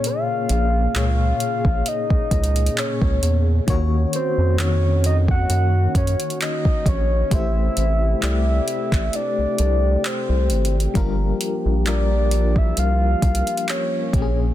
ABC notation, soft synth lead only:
X:1
M:4/4
L:1/16
Q:"Swing 16ths" 1/4=66
K:Bblyd
V:1 name="Soft synth lead"
f4 f4 _e4 _d3 z | z2 c2 _d2 _e _g3 d2 e2 d2 | e4 e4 d4 c3 z | z4 d3 e f4 ^c3 z |]